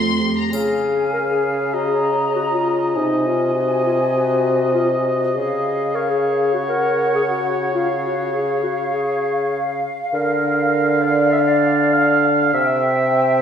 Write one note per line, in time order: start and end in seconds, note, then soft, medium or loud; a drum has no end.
0.00 0.32 F2 soft
0.00 0.29 A3 soft
0.00 0.33 C4 soft
0.00 0.22 F4 medium
0.00 0.36 C6 soft
0.20 0.51 G4 soft
0.38 0.53 A#5 soft
0.52 2.91 C#3 medium
0.52 1.12 G#4 medium
0.52 1.75 F5 soft
0.52 1.70 G#5 soft
0.52 triangle soft
1.13 1.20 A#4 medium
1.28 1.75 G#4 medium
1.73 1.90 F#4 medium
1.73 5.97 D#5 soft
1.73 2.95 A#5 soft
1.89 2.35 G#4 medium
2.35 2.42 F#4 medium
2.52 2.97 F4 medium
2.95 5.32 C3 medium
2.95 3.28 D#4 medium
2.95 5.10 G#5 medium
3.26 3.54 F4 medium
3.55 3.84 F#4 medium
3.85 3.98 F4 medium
4.14 4.74 F#4 medium
4.74 4.88 F4 medium
5.05 5.36 F#4 medium
5.35 9.83 C#3 medium
5.35 5.96 G#4 medium
5.35 6.53 F5 medium
5.94 6.09 A#4 medium
5.94 9.86 C#5 medium
6.10 6.53 G#4 medium
6.53 6.61 F#4 medium
6.53 7.76 F#5 medium
6.69 7.14 A#4 medium
7.15 7.22 G#4 medium
7.29 7.74 F#4 medium
7.74 7.88 F4 medium
7.74 12.28 F5 medium
8.04 8.35 F#4 medium
8.33 8.63 G#4 medium
8.63 8.77 F#4 medium
8.94 9.53 G#4 medium
10.13 12.50 D3 medium
10.13 11.03 A#4 medium
10.13 12.55 F5 medium
11.02 11.32 D5 medium
11.33 11.40 E5 medium
11.47 11.92 D5 medium
11.93 12.52 F5 medium
12.53 13.42 C3 medium
12.53 13.42 E5 medium
12.53 12.62 E5 medium
12.53 13.42 G5 medium
12.61 12.68 F5 medium
12.67 13.42 E5 medium